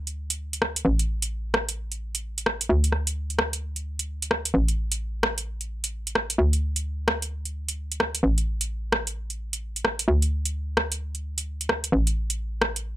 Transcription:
Already playing: fm bass D2
0.07 closed hi-hat
0.30 closed hi-hat
0.53 closed hi-hat
0.62 cross-stick
0.76 closed hi-hat
0.85 fm bass A1
0.99 closed hi-hat
1.22 closed hi-hat
1.54 cross-stick
1.69 closed hi-hat
1.92 closed hi-hat
2.15 closed hi-hat
2.38 closed hi-hat
2.46 cross-stick
2.61 closed hi-hat
2.69 fm bass D2
2.84 closed hi-hat
2.92 cross-stick
3.07 closed hi-hat
3.30 closed hi-hat
3.39 cross-stick
3.53 closed hi-hat
3.76 closed hi-hat
3.99 closed hi-hat
4.22 closed hi-hat
4.31 cross-stick
4.45 closed hi-hat
4.54 fm bass A1
4.68 closed hi-hat
4.92 closed hi-hat
5.23 cross-stick
5.38 closed hi-hat
5.61 closed hi-hat
5.84 closed hi-hat
6.07 closed hi-hat
6.15 cross-stick
6.30 closed hi-hat
6.38 fm bass D2
6.53 closed hi-hat
6.76 closed hi-hat
7.08 cross-stick
7.22 closed hi-hat
7.45 closed hi-hat
7.69 closed hi-hat
7.92 closed hi-hat
8.00 cross-stick
8.15 closed hi-hat
8.23 fm bass A1
8.38 closed hi-hat
8.61 closed hi-hat
8.92 cross-stick
9.07 closed hi-hat
9.30 closed hi-hat
9.53 closed hi-hat
9.76 closed hi-hat
9.85 cross-stick
9.99 closed hi-hat
10.08 fm bass D2
10.22 closed hi-hat
10.45 closed hi-hat
10.77 cross-stick
10.92 closed hi-hat
11.15 closed hi-hat
11.38 closed hi-hat
11.61 closed hi-hat
11.69 cross-stick
11.84 closed hi-hat
11.92 fm bass A1
12.07 closed hi-hat
12.30 closed hi-hat
12.62 cross-stick
12.76 closed hi-hat

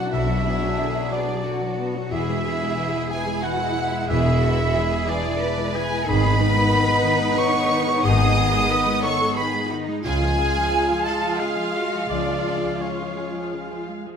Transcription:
Already playing: harp B2 F#3 B3 F#4 B4 D5 F#5 D6, viola section F#3 D4, french horn section F#3 D4, violin section F#4 F#5, flute F#5, oboe F#5
0.12 double bass section B1, harp B2, viola section D3, violin section E4 E5, cello section F#4, flute E5, oboe E5
0.29 harp F#3, viola section F#3
0.45 harp B3, viola section B3, cello section G#4
0.62 viola section F#3, harp F#4
0.78 viola section D3, harp D5
0.95 viola section F#3, harp B4
1.12 viola section B3, violin section D4 D5, flute D5, oboe D5, harp F#5
1.28 viola section F#3, harp D6
1.45 viola section D3, cello section F#4, harp F#5
1.62 viola section F#3, harp B4
1.78 viola section B3, harp D5
1.95 viola section F#3, harp F#4
2.11 double bass section E1, harp E2, viola section E3 E4, french horn section G#3 E4, violin section E4 E5, cello section G#4, oboe E5, flute E5
2.28 harp B2, viola section G#3
2.44 viola section E3, harp B3, cello section G#4
2.62 viola section G#3
2.77 viola section E3, harp E5
2.94 viola section G#3, harp B4
3.10 viola section E3, violin section G#4 G#5, oboe G#5, harp G#5, flute G#5
3.27 viola section G#3, harp E6
3.42 viola section E3, cello section F#4, violin section F#4 F#5, flute F#5, oboe F#5, harp G#5
3.60 viola section G#3, harp B4
3.76 viola section E3, cello section E4, harp E5
3.92 viola section G#3
4.09 double bass section E1, harp E2, viola section E3, violin section E4 E5, cello section G#4, oboe E5, flute E5
4.26 harp B2, viola section G#3
4.42 viola section E3, harp B3, cello section F#4
4.60 viola section G#3
4.75 viola section E3, cello section G#4
4.92 viola section G#3, harp B4
5.08 viola section E3, violin section D4 D5, oboe D5, flute D5, harp B5
5.25 viola section G#3, harp E6
5.42 viola section E3, cello section B4
5.58 viola section G#3, harp B4
5.74 viola section E3, violin section G#4 G#5, harp E5, flute G#5, oboe G#5
5.91 viola section G#3
6.06 double bass section G#1, harp G#2, viola section D#3 D#4, french horn section B3 D#4, cello section G#4, violin section B4 B5, oboe B5, flute B5
6.23 harp D#3, viola section G#3
6.39 viola section D#3, cello section B4
6.55 viola section G#3
6.73 viola section D#3, harp D#5
6.88 viola section G#3
7.05 viola section D#3
7.20 viola section G#3, harp D#6
7.37 viola section D#3, violin section C#5 C#6, oboe C#6, flute C#6
7.54 viola section G#3
7.69 viola section D#3, harp D#5
7.86 viola section G#3
8.03 double bass section G#1, harp G#2, viola section D#3, cello section G#4, violin section D#5 D#6, oboe D#6, flute D#6
8.19 harp D#3, viola section G#3
8.35 viola section D#3
8.53 viola section G#3
8.69 viola section D#3, cello section B4, harp D#5
8.87 viola section G#3
9.03 viola section D#3, cello section A4, violin section C#5 C#6, oboe C#6, flute C#6
9.20 viola section G#3, harp D#6
9.36 viola section D#3, cello section G#4, violin section B4 B5, oboe B5, flute B5
9.55 viola section G#3
9.70 viola section D#3, cello section D#4, harp D#5
9.89 viola section G#3
10.04 double bass section C#2, viola section C#3 F5, french horn section G#3 F4, cello section F4, violin section G#4 G#5, oboe G#5, flute G#5
10.22 viola section F3
10.38 viola section G#3, cello section F4
10.57 viola section F3
10.72 viola section C#3, harp F5
10.90 viola section F3
11.05 viola section G#3, violin section A4 A5, oboe A5, flute A5
11.23 viola section F3, harp F6
11.39 viola section C#3, violin section F4 F5, cello section G#4, oboe F5, flute F5, harp G#5
11.57 viola section F3, harp G#4
11.75 viola section G#3, cello section F#4, harp F5
11.93 viola section F3, harp G#4
12.09 double bass section C#2, viola section C#3, harp F3, violin section D4 D5, cello section F4, oboe D5, flute D5
12.28 viola section F3, harp F4
12.46 harp G#3, viola section G#3
12.64 viola section F3, harp G#4
12.81 viola section C#3, violin section C#4 C#5, oboe C#5, flute C#5, harp F5
13.00 viola section F3, harp G#4
13.17 viola section G#3, harp G#5
13.35 viola section F3, harp F6
13.52 viola section C#3, harp G#5
13.71 viola section F3, harp G#4
13.88 viola section G#3, harp F5
14.06 viola section F3, harp G#4

